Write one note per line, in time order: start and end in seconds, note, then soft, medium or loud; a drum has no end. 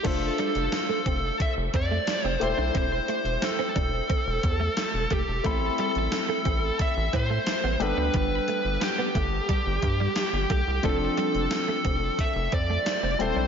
0.03 0.30 F1 loud
0.03 2.36 A3 medium
0.03 0.15 A3 medium
0.03 2.37 D4 medium
0.03 2.37 F4 medium
0.03 0.39 A4 medium
0.03 2.37 C5 medium
0.03 kick loud
0.03 closed hi-hat medium
0.03 crash medium
0.22 muted clean electric guitar stroke soft
0.38 0.49 G3 medium
0.38 1.37 A4 medium
0.38 closed hi-hat medium
0.55 0.68 F1 medium
0.55 closed hi-hat soft
0.72 muted clean electric guitar stroke soft
0.72 snare medium
0.72 closed hi-hat medium
0.89 1.00 A3 medium
1.06 1.31 F1 medium
1.06 1.17 C4 medium
1.06 kick medium
1.06 closed hi-hat medium
1.40 1.51 E5 medium
1.40 muted clean electric guitar stroke soft
1.40 kick medium
1.40 closed hi-hat medium
1.57 1.69 F1 medium
1.74 1.99 F2 loud
1.74 1.84 C4 medium
1.74 2.27 D5 medium
1.74 kick medium
1.74 closed hi-hat medium
1.91 2.01 A3 medium
2.07 snare loud
2.07 closed hi-hat medium
2.24 2.37 F1 medium
2.24 2.35 C4 medium
2.24 2.43 C5 medium
2.40 2.54 E1 medium
2.40 5.06 A3 medium
2.40 5.06 E4 medium
2.40 5.07 G4 medium
2.40 5.07 C5 medium
2.40 2.74 C5 medium
2.40 muted clean electric guitar stroke soft
2.40 closed hi-hat medium
2.58 2.71 B1 medium
2.58 2.68 D4 medium
2.75 3.00 E1 loud
2.75 2.85 C4 medium
2.75 3.44 C5 medium
2.75 kick loud
2.75 closed hi-hat medium
2.92 muted clean electric guitar stroke soft
3.08 3.19 A3 medium
3.08 closed hi-hat medium
3.25 3.38 E1 medium
3.25 closed hi-hat soft
3.42 5.17 A4 medium
3.42 muted clean electric guitar stroke soft
3.42 snare loud
3.42 closed hi-hat medium
3.59 3.69 C4 medium
3.76 4.01 E1 medium
3.76 3.86 D4 medium
3.76 kick medium
3.76 closed hi-hat medium
4.10 4.20 C4 medium
4.10 kick medium
4.10 closed hi-hat medium
4.26 4.39 E1 medium
4.43 4.69 E2 loud
4.43 muted clean electric guitar stroke soft
4.43 kick medium
4.43 closed hi-hat medium
4.60 4.70 A3 medium
4.77 snare loud
4.77 closed hi-hat medium
4.94 5.06 E1 medium
5.10 5.23 F1 medium
5.10 5.21 A3 medium
5.10 5.43 G4 medium
5.10 kick medium
5.10 closed hi-hat medium
5.28 5.40 E1 medium
5.44 5.70 A1 loud
5.44 7.76 A3 medium
5.44 5.55 A3 medium
5.44 7.76 C4 medium
5.44 7.77 E4 medium
5.44 5.77 A4 medium
5.44 7.77 B5 medium
5.44 kick loud
5.44 closed hi-hat medium
5.61 muted clean electric guitar stroke soft
5.78 5.89 G3 medium
5.78 6.76 A4 medium
5.78 closed hi-hat medium
5.95 6.08 A1 medium
5.95 closed hi-hat soft
6.12 muted clean electric guitar stroke soft
6.12 snare loud
6.12 closed hi-hat medium
6.29 6.39 A3 medium
6.45 6.71 A1 medium
6.45 6.56 C4 medium
6.45 kick medium
6.45 closed hi-hat medium
6.79 7.15 E5 medium
6.79 muted clean electric guitar stroke soft
6.79 kick medium
6.79 closed hi-hat medium
6.97 7.09 A1 medium
7.13 7.38 A2 loud
7.13 7.24 C4 medium
7.13 7.82 C5 medium
7.13 kick medium
7.13 closed hi-hat medium
7.30 7.40 A3 medium
7.46 snare loud
7.46 closed hi-hat medium
7.64 7.76 A1 medium
7.64 7.74 B3 medium
7.80 7.93 G1 medium
7.80 10.46 G3 medium
7.80 10.46 B3 medium
7.80 10.46 D4 medium
7.80 10.47 A4 medium
7.80 8.13 B4 medium
7.80 muted clean electric guitar stroke soft
7.80 closed hi-hat medium
7.97 8.10 D2 medium
7.97 8.08 D4 medium
8.14 8.39 G1 loud
8.14 8.25 G3 medium
8.14 8.79 B4 medium
8.14 kick loud
8.14 closed hi-hat medium
8.31 muted clean electric guitar stroke soft
8.48 8.59 A3 medium
8.48 closed hi-hat medium
8.65 8.77 G1 medium
8.81 10.50 G4 medium
8.81 muted clean electric guitar stroke soft
8.81 snare loud
8.81 closed hi-hat medium
8.98 9.09 B3 medium
9.15 9.40 G1 loud
9.15 9.26 A3 medium
9.15 kick medium
9.15 closed hi-hat medium
9.49 9.60 G3 medium
9.49 kick medium
9.49 closed hi-hat medium
9.66 9.79 G1 medium
9.82 10.08 G2 loud
9.82 muted clean electric guitar stroke soft
9.82 kick medium
9.82 closed hi-hat medium
10.00 10.10 G3 medium
10.16 snare loud
10.16 closed hi-hat medium
10.33 10.46 G1 medium
10.50 10.63 B1 medium
10.50 10.61 A3 medium
10.50 10.86 G4 medium
10.50 kick medium
10.50 closed hi-hat medium
10.67 10.80 C2 medium
10.83 11.09 F1 loud
10.83 13.15 F3 medium
10.83 10.94 A3 medium
10.83 13.16 C4 medium
10.83 13.16 D4 medium
10.83 11.16 A4 medium
10.83 13.16 A4 medium
10.83 kick loud
10.83 closed hi-hat medium
11.01 muted clean electric guitar stroke soft
11.17 11.28 G3 medium
11.17 12.23 A4 medium
11.17 closed hi-hat medium
11.35 11.47 F1 medium
11.35 closed hi-hat soft
11.51 muted clean electric guitar stroke soft
11.51 snare loud
11.51 closed hi-hat medium
11.68 11.79 A3 medium
11.85 12.10 F1 medium
11.85 11.95 C4 medium
11.85 kick medium
11.85 closed hi-hat medium
12.19 12.54 E5 medium
12.19 muted clean electric guitar stroke soft
12.19 kick medium
12.19 closed hi-hat medium
12.35 12.48 F1 medium
12.52 12.78 F2 loud
12.52 12.63 C4 medium
12.52 13.23 D5 medium
12.52 kick medium
12.52 closed hi-hat medium
12.70 12.80 A3 medium
12.86 snare loud
12.86 closed hi-hat medium
13.03 13.16 F1 medium
13.03 13.14 C4 medium
13.19 13.32 E1 medium
13.19 13.47 G3 medium
13.19 13.47 C4 medium
13.19 13.47 E4 medium
13.19 13.47 A4 medium
13.19 13.47 C5 medium
13.19 muted clean electric guitar stroke soft
13.19 closed hi-hat medium
13.36 13.47 B1 medium
13.36 13.47 D4 medium